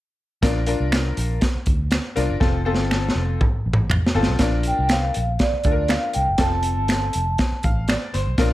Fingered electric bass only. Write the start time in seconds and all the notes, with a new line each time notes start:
0.43 A#1
0.80 C2
1.18 A#1
1.55 muted fingered electric bass stroke
1.67 D2
2.17 C2
2.30 F#1
2.41 F1
2.79 G1
3.15 F1
3.53 muted fingered electric bass stroke
3.66 A1
4.15 G1
4.28 B1
4.40 A#1
4.79 C2
5.17 A#1
5.54 muted fingered electric bass stroke
5.65 D2
6.16 C2
6.29 F#1
6.39 F1
6.78 G1
7.16 F1
7.52 muted fingered electric bass stroke
7.65 A1
8.14 G1
8.27 B1
8.39 A#1